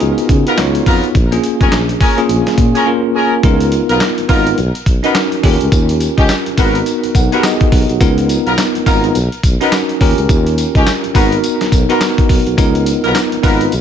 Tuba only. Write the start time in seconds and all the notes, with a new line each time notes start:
0.01 C#2
0.29 C#3
0.58 C#2
0.86 F2
1.15 A#1
1.61 F1
1.72 A#1
2.29 A#1
2.58 A#2
3.44 C#2
3.89 B1
4.18 G#1
4.29 G#1
4.58 B1
4.75 B1
4.86 B1
5.44 D#2
5.61 C#2
5.72 D#2
6.18 C#2
6.47 G#1
6.58 G#1
7.03 B1
7.15 B1
7.72 B1
7.89 B1
8.01 C#2
8.46 B1
8.75 G#1
8.86 G#1
9.15 B1
9.33 B1
9.44 B1
10.01 D#2
10.18 C#2
10.29 D#2
10.75 C#2
11.04 G#1
11.15 G#1
11.61 B1
11.72 B1
12.30 B1
12.47 B1
12.58 C#2
13.04 B1
13.32 G#1
13.44 G#1
13.72 B1